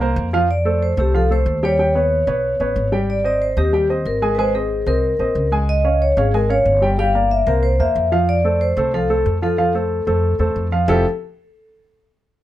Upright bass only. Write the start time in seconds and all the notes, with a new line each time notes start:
Already playing: C2
0.16 F2
0.97 C2
1.46 D#2
2.27 B1
2.60 A1
2.76 G#1
3.57 D#2
4.05 G#1
4.86 C2
5.19 A#1
5.35 C#2
6.17 G#1
6.66 G1
7.47 C2
7.79 E2
7.95 F2
8.77 C2
9.26 F2
10.07 F2
10.39 E2
10.56 F2
10.88 F1